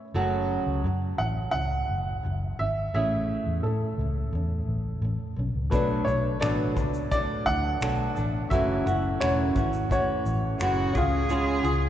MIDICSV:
0, 0, Header, 1, 7, 480
1, 0, Start_track
1, 0, Tempo, 696864
1, 97, Time_signature, 4, 2, 24, 8
1, 8191, End_track
2, 0, Start_track
2, 0, Title_t, "Upright piano"
2, 0, Program_c, 0, 0
2, 815, Note_on_c, 0, 78, 90
2, 870, Note_off_c, 0, 78, 0
2, 1043, Note_on_c, 0, 78, 96
2, 1785, Note_on_c, 0, 76, 84
2, 1794, Note_off_c, 0, 78, 0
2, 2019, Note_off_c, 0, 76, 0
2, 2029, Note_on_c, 0, 76, 84
2, 2501, Note_on_c, 0, 69, 60
2, 2519, Note_off_c, 0, 76, 0
2, 3674, Note_off_c, 0, 69, 0
2, 3933, Note_on_c, 0, 71, 70
2, 4164, Note_on_c, 0, 73, 79
2, 4185, Note_off_c, 0, 71, 0
2, 4413, Note_on_c, 0, 74, 81
2, 4421, Note_off_c, 0, 73, 0
2, 4890, Note_off_c, 0, 74, 0
2, 4900, Note_on_c, 0, 74, 98
2, 5138, Note_on_c, 0, 78, 106
2, 5149, Note_off_c, 0, 74, 0
2, 5833, Note_off_c, 0, 78, 0
2, 5856, Note_on_c, 0, 76, 88
2, 6340, Note_on_c, 0, 73, 78
2, 6354, Note_off_c, 0, 76, 0
2, 6793, Note_off_c, 0, 73, 0
2, 6833, Note_on_c, 0, 73, 77
2, 7520, Note_off_c, 0, 73, 0
2, 8191, End_track
3, 0, Start_track
3, 0, Title_t, "Cello"
3, 0, Program_c, 1, 42
3, 7299, Note_on_c, 1, 66, 98
3, 7540, Note_on_c, 1, 68, 108
3, 7550, Note_off_c, 1, 66, 0
3, 8191, Note_off_c, 1, 68, 0
3, 8191, End_track
4, 0, Start_track
4, 0, Title_t, "Felt piano"
4, 0, Program_c, 2, 0
4, 3925, Note_on_c, 2, 57, 61
4, 3941, Note_on_c, 2, 62, 55
4, 3953, Note_on_c, 2, 71, 65
4, 4057, Control_c, 2, 64, 127
4, 5826, Note_off_c, 2, 57, 0
4, 5834, Note_off_c, 2, 62, 0
4, 5841, Note_off_c, 2, 71, 0
4, 5846, Note_on_c, 2, 57, 61
4, 5863, Note_on_c, 2, 66, 60
4, 5870, Control_c, 2, 64, 0
4, 5878, Note_on_c, 2, 76, 72
4, 5984, Control_c, 2, 64, 127
4, 7506, Note_off_c, 2, 57, 0
4, 7514, Note_off_c, 2, 66, 0
4, 7522, Note_off_c, 2, 76, 0
4, 7528, Note_on_c, 2, 61, 73
4, 7542, Note_on_c, 2, 68, 61
4, 7551, Control_c, 2, 64, 0
4, 7559, Note_on_c, 2, 77, 84
4, 7685, Control_c, 2, 64, 127
4, 8191, Note_off_c, 2, 61, 0
4, 8191, Note_off_c, 2, 68, 0
4, 8191, Note_off_c, 2, 77, 0
4, 8191, End_track
5, 0, Start_track
5, 0, Title_t, "Nylon-string guitar"
5, 0, Program_c, 3, 24
5, 99, Note_on_c, 3, 42, 73
5, 102, Note_on_c, 3, 49, 79
5, 103, Note_on_c, 3, 57, 83
5, 107, Note_on_c, 3, 54, 87
5, 107, Note_on_c, 3, 66, 86
5, 109, Note_on_c, 3, 69, 88
5, 571, Note_off_c, 3, 42, 0
5, 579, Note_on_c, 3, 42, 62
5, 581, Note_off_c, 3, 49, 0
5, 583, Note_off_c, 3, 54, 0
5, 583, Note_off_c, 3, 66, 0
5, 589, Note_on_c, 3, 49, 64
5, 598, Note_on_c, 3, 54, 71
5, 771, Note_off_c, 3, 42, 0
5, 776, Note_off_c, 3, 49, 0
5, 780, Note_off_c, 3, 54, 0
5, 826, Note_on_c, 3, 42, 45
5, 831, Note_on_c, 3, 49, 40
5, 842, Note_on_c, 3, 54, 43
5, 1014, Note_off_c, 3, 42, 0
5, 1017, Note_off_c, 3, 49, 0
5, 1023, Note_off_c, 3, 54, 0
5, 1068, Note_on_c, 3, 42, 53
5, 1071, Note_on_c, 3, 49, 56
5, 1082, Note_on_c, 3, 54, 57
5, 1256, Note_off_c, 3, 42, 0
5, 1257, Note_off_c, 3, 49, 0
5, 1263, Note_off_c, 3, 54, 0
5, 1538, Note_on_c, 3, 42, 44
5, 1547, Note_on_c, 3, 49, 50
5, 1555, Note_on_c, 3, 54, 50
5, 1731, Note_off_c, 3, 42, 0
5, 1736, Note_off_c, 3, 49, 0
5, 1740, Note_off_c, 3, 54, 0
5, 1785, Note_on_c, 3, 42, 36
5, 1793, Note_on_c, 3, 49, 41
5, 1797, Note_on_c, 3, 54, 47
5, 1975, Note_off_c, 3, 42, 0
5, 1979, Note_off_c, 3, 49, 0
5, 1981, Note_off_c, 3, 54, 0
5, 2026, Note_off_c, 3, 57, 0
5, 2026, Note_on_c, 3, 57, 69
5, 2031, Note_on_c, 3, 61, 67
5, 2032, Note_off_c, 3, 69, 0
5, 2034, Note_on_c, 3, 68, 77
5, 2035, Note_on_c, 3, 64, 70
5, 2503, Note_off_c, 3, 57, 0
5, 2506, Note_off_c, 3, 61, 0
5, 2506, Note_on_c, 3, 57, 50
5, 2508, Note_off_c, 3, 64, 0
5, 2508, Note_off_c, 3, 68, 0
5, 2525, Note_on_c, 3, 61, 60
5, 2695, Note_off_c, 3, 57, 0
5, 2705, Note_off_c, 3, 61, 0
5, 2750, Note_on_c, 3, 57, 42
5, 2762, Note_on_c, 3, 61, 46
5, 2938, Note_off_c, 3, 57, 0
5, 2944, Note_off_c, 3, 61, 0
5, 2981, Note_on_c, 3, 57, 54
5, 2997, Note_on_c, 3, 61, 63
5, 3173, Note_off_c, 3, 57, 0
5, 3181, Note_off_c, 3, 61, 0
5, 3457, Note_on_c, 3, 57, 50
5, 3476, Note_on_c, 3, 61, 57
5, 3652, Note_off_c, 3, 57, 0
5, 3661, Note_off_c, 3, 61, 0
5, 3695, Note_on_c, 3, 57, 45
5, 3713, Note_on_c, 3, 61, 49
5, 3891, Note_off_c, 3, 57, 0
5, 3899, Note_off_c, 3, 61, 0
5, 3933, Note_on_c, 3, 47, 68
5, 3935, Note_on_c, 3, 54, 75
5, 3944, Note_on_c, 3, 57, 74
5, 3944, Note_on_c, 3, 62, 80
5, 3947, Note_on_c, 3, 69, 84
5, 4160, Note_off_c, 3, 69, 0
5, 4168, Note_on_c, 3, 69, 44
5, 4171, Note_off_c, 3, 62, 0
5, 4178, Note_off_c, 3, 47, 0
5, 4179, Note_off_c, 3, 54, 0
5, 4179, Note_on_c, 3, 62, 50
5, 4180, Note_off_c, 3, 57, 0
5, 4188, Note_on_c, 3, 57, 40
5, 4405, Note_off_c, 3, 57, 0
5, 4406, Note_on_c, 3, 47, 77
5, 4407, Note_off_c, 3, 62, 0
5, 4407, Note_off_c, 3, 69, 0
5, 4410, Note_on_c, 3, 54, 77
5, 4414, Note_on_c, 3, 57, 74
5, 4415, Note_on_c, 3, 62, 68
5, 4415, Note_on_c, 3, 69, 81
5, 4647, Note_off_c, 3, 69, 0
5, 4654, Note_off_c, 3, 47, 0
5, 4654, Note_off_c, 3, 62, 0
5, 4655, Note_on_c, 3, 69, 44
5, 4657, Note_off_c, 3, 54, 0
5, 4658, Note_off_c, 3, 57, 0
5, 4662, Note_on_c, 3, 62, 38
5, 4670, Note_on_c, 3, 57, 37
5, 4899, Note_off_c, 3, 57, 0
5, 4899, Note_off_c, 3, 69, 0
5, 4901, Note_on_c, 3, 54, 54
5, 4902, Note_off_c, 3, 62, 0
5, 4907, Note_on_c, 3, 57, 54
5, 4915, Note_on_c, 3, 62, 61
5, 4917, Note_on_c, 3, 69, 53
5, 5383, Note_off_c, 3, 62, 0
5, 5386, Note_off_c, 3, 54, 0
5, 5386, Note_off_c, 3, 57, 0
5, 5386, Note_on_c, 3, 47, 57
5, 5388, Note_on_c, 3, 54, 67
5, 5388, Note_on_c, 3, 57, 66
5, 5391, Note_on_c, 3, 62, 72
5, 5392, Note_off_c, 3, 69, 0
5, 5394, Note_on_c, 3, 69, 76
5, 5616, Note_off_c, 3, 69, 0
5, 5622, Note_off_c, 3, 62, 0
5, 5624, Note_off_c, 3, 47, 0
5, 5624, Note_on_c, 3, 69, 49
5, 5625, Note_off_c, 3, 54, 0
5, 5625, Note_off_c, 3, 57, 0
5, 5630, Note_on_c, 3, 62, 46
5, 5639, Note_on_c, 3, 57, 38
5, 5863, Note_off_c, 3, 69, 0
5, 5864, Note_off_c, 3, 57, 0
5, 5866, Note_off_c, 3, 62, 0
5, 5869, Note_on_c, 3, 42, 74
5, 5870, Note_on_c, 3, 49, 71
5, 5873, Note_on_c, 3, 57, 76
5, 5874, Note_on_c, 3, 52, 79
5, 5875, Note_on_c, 3, 61, 79
5, 5877, Note_on_c, 3, 66, 86
5, 6094, Note_off_c, 3, 66, 0
5, 6098, Note_off_c, 3, 61, 0
5, 6100, Note_off_c, 3, 57, 0
5, 6102, Note_on_c, 3, 66, 47
5, 6106, Note_off_c, 3, 42, 0
5, 6106, Note_off_c, 3, 49, 0
5, 6106, Note_off_c, 3, 52, 0
5, 6106, Note_on_c, 3, 61, 49
5, 6109, Note_on_c, 3, 57, 47
5, 6115, Note_on_c, 3, 52, 39
5, 6336, Note_off_c, 3, 52, 0
5, 6338, Note_on_c, 3, 42, 70
5, 6341, Note_off_c, 3, 57, 0
5, 6342, Note_off_c, 3, 66, 0
5, 6344, Note_off_c, 3, 61, 0
5, 6345, Note_on_c, 3, 49, 66
5, 6345, Note_on_c, 3, 52, 69
5, 6349, Note_on_c, 3, 57, 81
5, 6352, Note_on_c, 3, 66, 79
5, 6353, Note_on_c, 3, 61, 73
5, 6571, Note_off_c, 3, 66, 0
5, 6577, Note_off_c, 3, 61, 0
5, 6579, Note_on_c, 3, 66, 48
5, 6580, Note_off_c, 3, 42, 0
5, 6580, Note_off_c, 3, 57, 0
5, 6581, Note_off_c, 3, 52, 0
5, 6584, Note_off_c, 3, 49, 0
5, 6585, Note_on_c, 3, 61, 45
5, 6589, Note_on_c, 3, 52, 40
5, 6589, Note_on_c, 3, 57, 43
5, 6806, Note_off_c, 3, 52, 0
5, 6813, Note_off_c, 3, 57, 0
5, 6814, Note_on_c, 3, 52, 56
5, 6817, Note_off_c, 3, 61, 0
5, 6821, Note_off_c, 3, 66, 0
5, 6821, Note_on_c, 3, 57, 63
5, 6825, Note_on_c, 3, 61, 64
5, 6829, Note_on_c, 3, 66, 58
5, 7298, Note_off_c, 3, 52, 0
5, 7301, Note_off_c, 3, 57, 0
5, 7304, Note_on_c, 3, 42, 67
5, 7305, Note_off_c, 3, 66, 0
5, 7306, Note_on_c, 3, 49, 74
5, 7310, Note_off_c, 3, 61, 0
5, 7313, Note_on_c, 3, 52, 66
5, 7313, Note_on_c, 3, 61, 63
5, 7314, Note_on_c, 3, 57, 67
5, 7316, Note_on_c, 3, 66, 73
5, 7539, Note_off_c, 3, 66, 0
5, 7542, Note_on_c, 3, 68, 60
5, 7543, Note_off_c, 3, 42, 0
5, 7544, Note_off_c, 3, 49, 0
5, 7547, Note_off_c, 3, 52, 0
5, 7547, Note_off_c, 3, 61, 0
5, 7548, Note_off_c, 3, 57, 0
5, 7552, Note_on_c, 3, 65, 57
5, 7555, Note_on_c, 3, 61, 43
5, 7774, Note_off_c, 3, 65, 0
5, 7778, Note_off_c, 3, 61, 0
5, 7780, Note_on_c, 3, 56, 86
5, 7781, Note_on_c, 3, 49, 77
5, 7782, Note_off_c, 3, 68, 0
5, 7783, Note_on_c, 3, 65, 91
5, 7786, Note_on_c, 3, 61, 85
5, 7789, Note_on_c, 3, 68, 92
5, 8006, Note_off_c, 3, 68, 0
5, 8015, Note_on_c, 3, 68, 64
5, 8016, Note_off_c, 3, 65, 0
5, 8020, Note_off_c, 3, 56, 0
5, 8021, Note_off_c, 3, 49, 0
5, 8023, Note_off_c, 3, 61, 0
5, 8024, Note_on_c, 3, 65, 48
5, 8031, Note_on_c, 3, 61, 47
5, 8191, Note_off_c, 3, 61, 0
5, 8191, Note_off_c, 3, 65, 0
5, 8191, Note_off_c, 3, 68, 0
5, 8191, End_track
6, 0, Start_track
6, 0, Title_t, "Fingered electric bass"
6, 0, Program_c, 4, 33
6, 97, Note_on_c, 4, 30, 86
6, 393, Note_off_c, 4, 30, 0
6, 456, Note_on_c, 4, 37, 77
6, 555, Note_off_c, 4, 37, 0
6, 576, Note_on_c, 4, 42, 82
6, 774, Note_off_c, 4, 42, 0
6, 816, Note_on_c, 4, 33, 84
6, 1014, Note_off_c, 4, 33, 0
6, 1056, Note_on_c, 4, 37, 77
6, 1254, Note_off_c, 4, 37, 0
6, 1303, Note_on_c, 4, 30, 73
6, 1498, Note_off_c, 4, 30, 0
6, 1547, Note_on_c, 4, 30, 72
6, 1741, Note_off_c, 4, 30, 0
6, 1786, Note_on_c, 4, 32, 65
6, 1981, Note_off_c, 4, 32, 0
6, 2024, Note_on_c, 4, 33, 90
6, 2318, Note_off_c, 4, 33, 0
6, 2385, Note_on_c, 4, 40, 63
6, 2482, Note_off_c, 4, 40, 0
6, 2501, Note_on_c, 4, 45, 82
6, 2698, Note_off_c, 4, 45, 0
6, 2739, Note_on_c, 4, 37, 78
6, 2937, Note_off_c, 4, 37, 0
6, 2980, Note_on_c, 4, 40, 75
6, 3178, Note_off_c, 4, 40, 0
6, 3218, Note_on_c, 4, 33, 79
6, 3417, Note_off_c, 4, 33, 0
6, 3454, Note_on_c, 4, 33, 79
6, 3556, Note_off_c, 4, 33, 0
6, 3700, Note_on_c, 4, 35, 78
6, 3799, Note_off_c, 4, 35, 0
6, 3819, Note_on_c, 4, 37, 66
6, 3919, Note_off_c, 4, 37, 0
6, 3943, Note_on_c, 4, 35, 83
6, 4139, Note_off_c, 4, 35, 0
6, 4180, Note_on_c, 4, 35, 88
6, 4378, Note_off_c, 4, 35, 0
6, 4422, Note_on_c, 4, 33, 77
6, 4658, Note_off_c, 4, 33, 0
6, 4658, Note_on_c, 4, 37, 83
6, 5054, Note_off_c, 4, 37, 0
6, 5142, Note_on_c, 4, 38, 87
6, 5339, Note_off_c, 4, 38, 0
6, 5379, Note_on_c, 4, 35, 88
6, 5577, Note_off_c, 4, 35, 0
6, 5626, Note_on_c, 4, 33, 80
6, 5822, Note_off_c, 4, 33, 0
6, 5863, Note_on_c, 4, 30, 86
6, 6059, Note_off_c, 4, 30, 0
6, 6103, Note_on_c, 4, 30, 91
6, 6300, Note_off_c, 4, 30, 0
6, 6347, Note_on_c, 4, 28, 70
6, 6542, Note_off_c, 4, 28, 0
6, 6586, Note_on_c, 4, 32, 74
6, 6978, Note_off_c, 4, 32, 0
6, 7066, Note_on_c, 4, 33, 90
6, 7261, Note_off_c, 4, 33, 0
6, 7304, Note_on_c, 4, 30, 82
6, 7500, Note_off_c, 4, 30, 0
6, 7540, Note_on_c, 4, 37, 80
6, 7934, Note_off_c, 4, 37, 0
6, 8017, Note_on_c, 4, 37, 88
6, 8191, Note_off_c, 4, 37, 0
6, 8191, End_track
7, 0, Start_track
7, 0, Title_t, "Drums"
7, 3942, Note_on_c, 9, 36, 88
7, 3943, Note_on_c, 9, 82, 67
7, 4010, Note_off_c, 9, 36, 0
7, 4012, Note_off_c, 9, 82, 0
7, 4184, Note_on_c, 9, 82, 35
7, 4253, Note_off_c, 9, 82, 0
7, 4425, Note_on_c, 9, 26, 91
7, 4428, Note_on_c, 9, 82, 59
7, 4494, Note_off_c, 9, 26, 0
7, 4497, Note_off_c, 9, 82, 0
7, 4661, Note_on_c, 9, 36, 84
7, 4662, Note_on_c, 9, 82, 43
7, 4730, Note_off_c, 9, 36, 0
7, 4731, Note_off_c, 9, 82, 0
7, 4778, Note_on_c, 9, 82, 53
7, 4847, Note_off_c, 9, 82, 0
7, 4902, Note_on_c, 9, 36, 87
7, 4903, Note_on_c, 9, 82, 76
7, 4971, Note_off_c, 9, 36, 0
7, 4971, Note_off_c, 9, 82, 0
7, 5143, Note_on_c, 9, 36, 73
7, 5144, Note_on_c, 9, 82, 42
7, 5212, Note_off_c, 9, 36, 0
7, 5213, Note_off_c, 9, 82, 0
7, 5382, Note_on_c, 9, 82, 68
7, 5389, Note_on_c, 9, 26, 97
7, 5451, Note_off_c, 9, 82, 0
7, 5458, Note_off_c, 9, 26, 0
7, 5621, Note_on_c, 9, 82, 42
7, 5690, Note_off_c, 9, 82, 0
7, 5864, Note_on_c, 9, 36, 100
7, 5867, Note_on_c, 9, 82, 66
7, 5933, Note_off_c, 9, 36, 0
7, 5936, Note_off_c, 9, 82, 0
7, 6109, Note_on_c, 9, 26, 33
7, 6111, Note_on_c, 9, 82, 42
7, 6178, Note_off_c, 9, 26, 0
7, 6179, Note_off_c, 9, 82, 0
7, 6347, Note_on_c, 9, 26, 96
7, 6350, Note_on_c, 9, 82, 56
7, 6416, Note_off_c, 9, 26, 0
7, 6419, Note_off_c, 9, 82, 0
7, 6583, Note_on_c, 9, 82, 43
7, 6584, Note_on_c, 9, 36, 86
7, 6652, Note_off_c, 9, 36, 0
7, 6652, Note_off_c, 9, 82, 0
7, 6703, Note_on_c, 9, 82, 52
7, 6772, Note_off_c, 9, 82, 0
7, 6826, Note_on_c, 9, 36, 83
7, 6830, Note_on_c, 9, 82, 73
7, 6895, Note_off_c, 9, 36, 0
7, 6899, Note_off_c, 9, 82, 0
7, 7066, Note_on_c, 9, 82, 42
7, 7135, Note_off_c, 9, 82, 0
7, 7301, Note_on_c, 9, 82, 74
7, 7308, Note_on_c, 9, 26, 105
7, 7369, Note_off_c, 9, 82, 0
7, 7376, Note_off_c, 9, 26, 0
7, 7540, Note_on_c, 9, 82, 45
7, 7543, Note_on_c, 9, 36, 91
7, 7608, Note_off_c, 9, 82, 0
7, 7612, Note_off_c, 9, 36, 0
7, 7779, Note_on_c, 9, 82, 64
7, 7848, Note_off_c, 9, 82, 0
7, 8022, Note_on_c, 9, 26, 32
7, 8023, Note_on_c, 9, 82, 40
7, 8091, Note_off_c, 9, 26, 0
7, 8092, Note_off_c, 9, 82, 0
7, 8191, End_track
0, 0, End_of_file